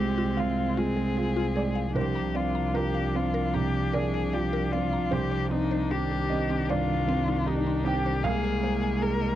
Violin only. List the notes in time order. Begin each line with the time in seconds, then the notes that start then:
Already playing: G4
0.39 F4
0.77 G#4
1.95 G4
2.35 F4
2.75 G4
3.15 F4
3.54 G4
3.94 G#4
4.33 G4
4.72 F4
5.12 G4
5.51 D#4
5.91 G4
6.69 F4
7.46 D#4
7.85 G4
8.23 G#4
9.02 A#4